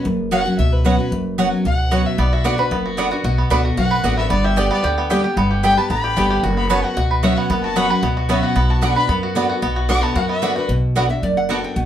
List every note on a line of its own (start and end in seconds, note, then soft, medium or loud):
0.05 0.43 F#1 loud
0.05 0.56 F#2 medium
0.31 0.45 F#3 medium
0.31 0.41 B3 medium
0.31 0.45 B3 medium
0.31 0.45 C#4 medium
0.31 0.41 F#4 medium
0.31 0.44 F#4 medium
0.31 0.41 C#5 loud
0.31 0.58 F#5 loud
0.31 0.42 F#5 loud
0.45 0.59 C#4 soft
0.45 0.58 F#4 medium
0.58 0.97 C#2 medium
0.58 1.09 B2 medium
0.58 0.74 E5 medium
0.73 0.85 B4 loud
0.85 0.98 F#3 medium
0.85 0.94 B3 medium
0.85 0.98 B3 medium
0.85 0.99 C#4 medium
0.85 0.94 F#4 medium
0.85 0.97 F#4 medium
0.85 1.11 B4 loud
0.85 0.95 C#5 medium
0.85 0.95 F#5 loud
0.98 1.12 C#4 soft
0.98 1.11 F#4 medium
1.12 1.50 F#1 loud
1.12 1.63 F#2 loud
1.38 1.64 F#3 medium
1.38 1.47 B3 medium
1.38 1.64 B3 medium
1.38 1.64 C#4 medium
1.38 1.48 F#4 medium
1.38 1.64 F#4 medium
1.38 1.48 C#5 medium
1.38 1.48 F#5 loud
1.65 2.03 C#2 medium
1.65 2.16 B2 medium
1.65 2.08 F#5 loud
1.91 2.17 F#3 medium
1.91 2.01 B3 medium
1.91 2.17 B3 medium
1.91 2.17 C#4 medium
1.91 2.01 F#4 medium
1.91 2.18 F#4 loud
1.91 2.01 C#5 medium
1.91 2.01 F#5 medium
2.06 2.21 E5 loud
2.18 2.56 B1 medium
2.18 2.69 B2 loud
2.18 2.71 B3 medium
2.18 2.34 D5 medium
2.32 2.44 F#4 medium
2.32 2.47 E5 medium
2.44 2.58 D3 medium
2.44 2.54 B3 loud
2.44 2.58 B3 medium
2.44 2.58 D4 loud
2.44 2.54 F#4 medium
2.44 2.83 F#4 medium
2.44 2.57 F#4 medium
2.44 2.54 D5 loud
2.44 2.61 D5 loud
2.44 2.54 F#5 loud
2.58 2.71 D4 soft
2.58 2.71 F#4 medium
2.58 3.51 B4 medium
2.58 2.71 B4 loud
2.71 3.09 F#1 medium
2.71 3.22 F#2 medium
2.71 2.98 B3 medium
2.86 3.10 F#4 medium
2.97 3.11 D3 medium
2.97 3.07 B3 medium
2.97 3.11 B3 medium
2.97 3.38 B3 medium
2.97 3.11 D4 medium
2.97 3.07 F#4 medium
2.97 3.10 F#4 loud
2.97 3.07 D5 loud
2.97 3.08 F#5 medium
3.11 3.24 D4 soft
3.11 3.24 F#4 medium
3.11 3.23 F#4 medium
3.24 3.43 B1 medium
3.24 3.75 B2 loud
3.24 3.62 F#4 medium
3.38 4.17 B3 medium
3.50 3.73 C#2 medium
3.50 3.76 D3 medium
3.50 3.60 B3 loud
3.50 3.76 B3 medium
3.50 3.77 D4 medium
3.50 3.60 F#4 medium
3.50 3.77 F#4 medium
3.50 3.90 B4 medium
3.50 3.60 D5 medium
3.50 3.60 F#5 loud
3.65 3.77 F#4 medium
3.77 4.00 B1 medium
3.77 4.28 F#2 medium
3.77 4.03 F#4 medium
3.77 4.17 F#5 loud
3.91 5.31 B4 medium
4.04 4.26 A1 loud
4.04 4.29 D3 medium
4.04 4.13 B3 medium
4.04 4.30 B3 medium
4.04 4.30 D4 loud
4.04 4.31 F#4 medium
4.04 4.13 F#4 medium
4.04 4.30 F#4 medium
4.04 4.13 D5 medium
4.04 4.14 F#5 medium
4.17 4.30 B3 medium
4.17 4.30 E5 loud
4.30 4.68 G1 loud
4.30 4.81 G2 loud
4.30 4.70 B3 medium
4.30 4.46 D5 loud
4.44 4.56 G4 medium
4.44 4.60 E5 loud
4.56 4.70 D3 medium
4.56 4.70 G3 medium
4.56 4.66 B3 medium
4.56 4.71 B3 medium
4.56 4.66 G4 medium
4.56 4.83 G4 medium
4.56 4.69 G4 medium
4.56 4.67 D5 loud
4.56 4.71 D5 loud
4.56 4.67 G5 loud
4.71 4.97 B3 medium
4.71 4.84 B3 soft
4.71 4.83 G4 medium
4.71 4.84 D5 loud
4.84 5.22 D2 medium
4.84 5.09 D3 medium
4.84 5.09 G4 medium
4.98 5.37 B3 medium
5.10 5.24 D3 medium
5.10 5.24 G3 medium
5.10 5.20 B3 medium
5.10 5.24 B3 loud
5.10 5.20 G4 medium
5.10 5.23 G4 medium
5.10 5.23 G4 loud
5.10 5.20 D5 medium
5.10 5.20 G5 loud
5.24 5.37 B3 soft
5.24 5.36 G4 medium
5.24 5.49 G4 medium
5.37 5.75 G1 loud
5.37 5.88 G2 medium
5.37 5.90 B3 medium
5.51 5.62 G4 medium
5.63 5.77 D3 medium
5.63 5.77 G3 medium
5.63 5.73 B3 medium
5.63 5.77 B3 medium
5.63 6.01 G4 medium
5.63 5.73 G4 medium
5.63 5.76 G4 medium
5.63 5.73 D5 medium
5.63 5.79 G5 loud
5.63 5.73 G5 loud
5.77 5.91 B3 soft
5.77 5.90 G4 medium
5.77 6.70 B4 medium
5.77 5.89 A5 loud
5.90 6.13 A1 medium
5.90 6.16 D3 medium
5.90 6.16 B3 medium
5.90 6.42 B5 loud
6.04 6.29 G4 medium
6.16 6.39 G1 medium
6.16 6.42 D3 medium
6.16 6.42 G3 medium
6.16 6.26 B3 medium
6.16 6.57 B3 medium
6.16 6.43 B3 medium
6.16 6.26 G4 medium
6.16 6.43 G4 medium
6.16 6.26 D5 medium
6.16 6.26 G5 medium
6.30 6.43 G4 medium
6.43 6.81 F#1 loud
6.43 6.94 F#2 medium
6.43 6.84 F#4 medium
6.57 7.37 B3 medium
6.57 6.69 B5 medium
6.70 6.95 F#3 medium
6.70 6.79 B3 loud
6.70 6.96 B3 medium
6.70 6.96 C#4 medium
6.70 6.79 F#4 medium
6.70 6.96 F#4 loud
6.70 7.10 B4 medium
6.70 6.79 C#5 loud
6.70 6.80 F#5 loud
6.70 6.85 A5 loud
6.84 6.97 F#4 medium
6.84 6.96 F#5 loud
6.96 7.35 C#2 medium
6.96 7.47 B2 medium
6.96 7.23 F#4 medium
7.11 7.90 B4 medium
7.23 7.48 F#3 medium
7.23 7.32 B3 medium
7.23 7.49 B3 medium
7.23 7.49 C#4 medium
7.23 7.32 F#4 medium
7.23 7.64 F#4 medium
7.23 7.49 F#4 medium
7.23 7.33 C#5 medium
7.23 7.38 E5 loud
7.23 7.33 F#5 medium
7.37 7.50 B3 medium
7.37 7.63 F#5 loud
7.50 7.88 F#1 loud
7.50 8.01 F#2 loud
7.50 8.03 B3 medium
7.63 7.77 F#4 medium
7.63 7.78 A5 medium
7.76 7.89 F#3 medium
7.76 7.85 B3 medium
7.76 7.90 B3 medium
7.76 7.90 C#4 medium
7.76 7.86 F#4 loud
7.76 8.17 F#4 medium
7.76 7.88 F#4 medium
7.76 7.86 C#5 loud
7.76 7.86 F#5 loud
7.76 7.92 B5 loud
7.90 8.03 C#4 soft
7.90 8.02 F#4 medium
7.90 8.96 B4 medium
7.90 8.03 F#5 loud
8.03 8.41 C#2 medium
8.03 8.54 B2 medium
8.03 8.29 B3 medium
8.17 8.43 F#4 medium
8.29 8.55 F#3 medium
8.29 8.39 B3 medium
8.29 8.55 B3 medium
8.29 8.55 C#4 loud
8.29 8.39 F#4 medium
8.29 8.55 F#4 medium
8.29 8.39 C#5 medium
8.29 8.45 E5 loud
8.29 8.39 F#5 medium
8.43 8.70 F#4 medium
8.43 8.72 F#5 loud
8.56 8.94 B1 loud
8.56 9.07 B2 medium
8.56 9.09 B3 medium
8.70 8.82 F#4 medium
8.70 8.84 A5 medium
8.81 8.95 D3 medium
8.81 8.96 B3 medium
8.81 8.92 B3 medium
8.81 8.96 D4 loud
8.81 8.92 F#4 medium
8.81 9.23 F#4 medium
8.81 8.94 F#4 medium
8.81 8.92 D5 loud
8.81 8.92 F#5 medium
8.81 8.96 B5 loud
8.96 9.09 D4 medium
8.96 9.09 F#4 medium
8.96 10.36 B4 medium
8.96 9.09 B5 loud
9.09 9.47 F#2 medium
9.09 9.60 F#2 medium
9.09 9.36 B3 medium
9.23 9.49 F#4 medium
9.35 9.61 D3 medium
9.35 9.45 B3 medium
9.35 9.61 B3 medium
9.35 9.62 D4 medium
9.35 9.45 F#4 medium
9.35 9.62 F#4 medium
9.35 9.45 D5 medium
9.35 9.46 F#5 medium
9.49 9.75 F#4 medium
9.62 10.01 B1 medium
9.62 10.13 B2 loud
9.62 10.00 B3 medium
9.76 9.88 F#4 medium
9.89 10.15 D3 medium
9.89 9.98 B3 medium
9.89 10.15 B3 medium
9.89 10.15 D4 medium
9.89 10.15 F#4 medium
9.89 9.99 F#4 medium
9.89 10.15 F#4 loud
9.89 9.99 D5 loud
9.89 9.99 F#5 loud
9.89 10.05 D6 loud
10.03 10.28 B3 medium
10.03 10.15 A5 loud
10.15 10.54 F#2 medium
10.15 10.67 F#2 medium
10.15 10.42 F#4 medium
10.15 10.29 F#5 medium
10.29 10.67 B3 medium
10.29 10.56 E5 loud
10.42 10.56 D3 medium
10.42 10.52 B3 medium
10.42 10.56 B3 loud
10.42 10.56 D4 medium
10.42 10.52 F#4 medium
10.42 10.55 F#4 medium
10.42 10.55 F#4 loud
10.42 10.52 D5 medium
10.42 10.52 F#5 medium
10.56 10.70 D4 soft
10.56 10.69 F#4 medium
10.56 10.69 B4 loud
10.69 11.07 B1 medium
10.69 11.20 B2 medium
10.95 11.09 D3 medium
10.95 11.05 B3 medium
10.95 11.09 B3 medium
10.95 11.03 B3 medium
10.95 11.10 D4 medium
10.95 11.05 F#4 medium
10.95 11.03 F#4 medium
10.95 11.08 F#4 medium
10.95 11.06 D5 medium
10.95 11.06 F#5 medium
11.09 11.23 D4 soft
11.09 11.22 F#4 medium
11.09 11.23 E5 medium
11.22 11.61 F#1 medium
11.22 11.74 F#2 medium
11.22 11.36 D5 medium
11.37 11.49 F#5 loud
11.49 11.75 D3 medium
11.49 11.58 B3 medium
11.49 11.75 B3 medium
11.49 11.56 B3 medium
11.49 11.75 D4 medium
11.49 11.59 F#4 medium
11.49 11.75 F#4 loud
11.49 11.56 F#4 medium
11.49 11.59 D5 medium
11.49 11.59 F#5 medium
11.49 11.63 A5 medium
11.64 11.76 G5 medium
11.76 11.86 B1 medium
11.76 11.86 B2 medium
11.76 11.86 F#5 medium